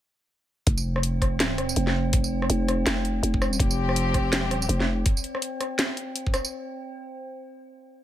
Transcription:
0.67 F1 C4, kick, closed hi-hat
0.78 tambourine
0.96 cross-stick
1.03 closed hi-hat
1.22 kick, cross-stick, closed hi-hat
1.40 snare, closed hi-hat
1.58 cross-stick, closed hi-hat
1.69 tambourine
1.76 F1, closed hi-hat
1.87 snare
2.13 kick, closed hi-hat
2.24 tambourine
2.42 cross-stick
2.50 F1, closed hi-hat
2.68 cross-stick, closed hi-hat
2.86 F1, snare, closed hi-hat
3.05 closed hi-hat
3.23 F1, closed hi-hat
3.34 kick
3.42 cross-stick, tambourine
3.53 tambourine
3.59 F1 F3 C4 G4, kick, closed hi-hat
3.71 tambourine
3.89 cross-stick
3.96 closed hi-hat
4.14 kick, cross-stick, closed hi-hat
4.33 E1, snare, closed hi-hat
4.51 cross-stick, closed hi-hat
4.58 D#1
4.62 tambourine
4.69 F1, closed hi-hat
4.80 snare
5.06 kick, closed hi-hat
5.17 tambourine
5.24 closed hi-hat
5.35 cross-stick
5.42 closed hi-hat
5.61 cross-stick, closed hi-hat
5.79 snare, closed hi-hat
5.97 closed hi-hat
6.16 closed hi-hat
6.27 kick
6.34 cross-stick, closed hi-hat, tambourine
6.45 tambourine

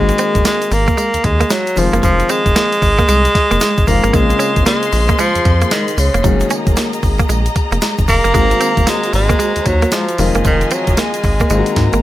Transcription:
Already playing: G#1 D#3 G#3 A#3 C4 F#4
0.09 muted clean electric guitar stroke, closed hi-hat, shaker
0.18 C4, closed hi-hat, tambourine, shaker
0.35 F#1, kick, closed hi-hat, shaker
0.45 G#3 A#3, snare, closed hi-hat, tambourine, shaker
0.62 closed hi-hat, shaker
0.71 G#1 A#3, muted clean electric guitar stroke, open hi-hat, shaker
0.88 A#3, kick, closed hi-hat, shaker
0.97 G#3, closed hi-hat, tambourine, shaker
1.14 D#2, closed hi-hat, shaker
1.24 D#2 G#3, muted clean electric guitar stroke, kick, closed hi-hat, tambourine
1.40 A#3, closed hi-hat, shaker
1.50 F#3 G#3, snare, closed hi-hat, tambourine, shaker
1.67 closed hi-hat, shaker
1.76 F1 D#3 F3 G#3 C4 F4, muted clean electric guitar stroke, open hi-hat, tambourine, shaker
1.93 F#1 A#3, closed hi-hat, shaker
2.03 F1 F3, kick, closed hi-hat, tambourine, shaker
2.19 muted clean electric guitar stroke, closed hi-hat, shaker
2.29 G#3 C4, closed hi-hat, tambourine, shaker
2.46 F1, kick, closed hi-hat, shaker
2.56 A#3, snare, closed hi-hat, tambourine, shaker
2.72 closed hi-hat, shaker
2.82 G#1, muted clean electric guitar stroke, kick, open hi-hat, shaker
2.99 A#3, kick, closed hi-hat, shaker
3.08 C2 G#3, closed hi-hat, tambourine, shaker
3.25 closed hi-hat, shaker
3.35 muted clean electric guitar stroke, kick, snare, closed hi-hat, tambourine
3.51 F1 A#3, closed hi-hat, shaker
3.60 G#3, snare, closed hi-hat, tambourine, shaker
3.77 G#1, kick, closed hi-hat, shaker
3.87 F#1 D#3 F3 G#3 A#3 C4 F4, muted clean electric guitar stroke, kick, open hi-hat, tambourine, shaker
4.04 G#1 A#3, closed hi-hat, shaker
4.13 A#1 C#3 G#3 A#3 C4 F4 G#4 C5 C6, kick, closed hi-hat, tambourine, shaker
4.30 muted clean electric guitar stroke, closed hi-hat, shaker
4.39 C#4, closed hi-hat, tambourine, shaker
4.56 G#1, kick, closed hi-hat, shaker
4.66 G#3 A#3, snare, closed hi-hat, tambourine, shaker
4.83 closed hi-hat, shaker
4.92 A#1, muted clean electric guitar stroke, open hi-hat, shaker
5.09 A#3, kick, closed hi-hat, shaker
5.18 F3 G#3, closed hi-hat, tambourine, shaker
5.35 F2, closed hi-hat, shaker
5.45 F2, muted clean electric guitar stroke, kick, closed hi-hat, tambourine
5.61 A#3, closed hi-hat, shaker
5.71 D#3 G#3, snare, closed hi-hat, tambourine, shaker
5.88 closed hi-hat, shaker
5.98 C#2 C#3, muted clean electric guitar stroke, open hi-hat, tambourine, shaker
6.14 F1 A#3, closed hi-hat, shaker
6.24 F#1 D#3 F#3 G#3 A3 C#4 F#4 D#5 A#5, kick, closed hi-hat, tambourine, shaker
6.31 A#3
6.40 muted clean electric guitar stroke, closed hi-hat, shaker
6.50 C#4, closed hi-hat, tambourine, shaker
6.67 F#1, kick, closed hi-hat, shaker
6.76 A#3, snare, closed hi-hat, tambourine, shaker
6.93 closed hi-hat, shaker
7.03 G#1, muted clean electric guitar stroke, kick, open hi-hat, shaker
7.19 A#3, kick, closed hi-hat, shaker
7.29 A#1 G#3, closed hi-hat, tambourine, shaker
7.46 closed hi-hat, shaker
7.56 muted clean electric guitar stroke, kick, closed hi-hat, tambourine
7.72 F1 A#3, closed hi-hat, shaker
7.81 G#3, snare, closed hi-hat, tambourine, shaker
7.98 F#1, kick, closed hi-hat, shaker
8.08 F1 A#3, muted clean electric guitar stroke, kick, open hi-hat, tambourine, shaker
8.24 F#1 A#3, closed hi-hat, shaker
8.34 G#1 D#3 G#3 A#3 C4 F#4 C5, kick, closed hi-hat, tambourine, shaker
8.51 muted clean electric guitar stroke, closed hi-hat, shaker
8.61 C4, closed hi-hat, tambourine, shaker
8.77 F#1, kick, closed hi-hat, shaker
8.87 G#3 A#3, snare, closed hi-hat, tambourine, shaker
9.03 closed hi-hat, shaker
9.13 G#1 G#3, muted clean electric guitar stroke, open hi-hat, shaker
9.29 A#3, kick, closed hi-hat, shaker
9.39 G#3, closed hi-hat, tambourine, shaker
9.56 D#2, closed hi-hat, shaker
9.66 D#2 F#3, muted clean electric guitar stroke, kick, closed hi-hat, tambourine
9.82 A#3, closed hi-hat, shaker
9.92 F3 G#3, snare, closed hi-hat, tambourine, shaker
10.08 closed hi-hat, shaker
10.18 F1 D#3 F3 G#3 C4 F4 D#5 G#5, muted clean electric guitar stroke, open hi-hat, tambourine, shaker
10.35 F#1 A#3, closed hi-hat, shaker
10.45 F1 D#3 F3, kick, closed hi-hat, tambourine, shaker
10.61 muted clean electric guitar stroke, closed hi-hat, shaker
10.71 F#3 C4, closed hi-hat, tambourine, shaker
10.87 F1, kick, closed hi-hat, shaker
10.97 G#3 A#3, snare, closed hi-hat, tambourine, shaker
11.14 closed hi-hat, shaker
11.24 G#1, muted clean electric guitar stroke, kick, open hi-hat, shaker
11.40 A#3, kick, closed hi-hat, shaker
11.50 G#1 D#3 G#3 A#3 C4 F4 F#4 C5 A#5, closed hi-hat, tambourine, shaker
11.59 F#4
11.66 closed hi-hat, shaker
11.76 G#2, muted clean electric guitar stroke, kick, snare, closed hi-hat, tambourine
11.93 G#1 A#3, closed hi-hat, shaker

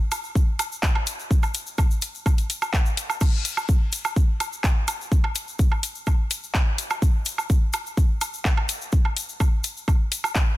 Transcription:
0.12 closed hi-hat, low woodblock, shaker
0.24 shaker
0.35 kick, shaker
0.59 closed hi-hat, low woodblock, shaker
0.72 shaker
0.83 kick, clap, shaker
0.95 low woodblock
1.07 closed hi-hat, shaker
1.19 shaker
1.31 kick, shaker
1.43 low woodblock, shaker
1.54 closed hi-hat, shaker
1.66 shaker
1.78 kick, low woodblock, shaker
1.91 shaker
2.02 closed hi-hat, shaker
2.15 shaker
2.26 kick, low woodblock, shaker
2.38 closed hi-hat, shaker
2.50 closed hi-hat, shaker
2.62 low woodblock, shaker
2.74 kick, clap, shaker
2.86 shaker
2.97 closed hi-hat, shaker
3.10 low woodblock, shaker
3.21 kick, crash, low woodblock, shaker
3.45 closed hi-hat, shaker
3.57 low woodblock, shaker
3.69 kick, shaker
3.92 closed hi-hat, shaker
4.05 low woodblock, shaker
4.16 kick, shaker
4.40 closed hi-hat, low woodblock, shaker
4.53 shaker
4.64 kick, clap, shaker
4.88 closed hi-hat, low woodblock, shaker
5.01 shaker
5.12 kick, shaker
5.24 low woodblock
5.35 closed hi-hat, shaker
5.48 shaker
5.59 kick, shaker
5.72 low woodblock
5.83 closed hi-hat, shaker
5.95 shaker
6.07 kick, low woodblock, shaker
6.31 closed hi-hat, shaker
6.44 shaker
6.54 kick, clap, low woodblock, shaker
6.78 closed hi-hat, shaker
6.90 low woodblock, shaker
7.02 kick, shaker
7.25 closed hi-hat, shaker
7.38 low woodblock, shaker
7.50 kick, shaker
7.73 closed hi-hat, low woodblock, shaker
7.86 shaker
7.97 kick, shaker
8.21 closed hi-hat, low woodblock, shaker
8.34 shaker
8.45 kick, clap, shaker
8.57 low woodblock
8.69 closed hi-hat, shaker
8.81 shaker
8.92 kick, shaker
9.05 low woodblock
9.17 closed hi-hat, shaker
9.29 shaker
9.40 kick, low woodblock, shaker
9.64 closed hi-hat, shaker
9.77 shaker
9.88 kick, low woodblock, shaker
10.12 closed hi-hat, shaker
10.24 low woodblock, shaker
10.35 kick, clap, shaker

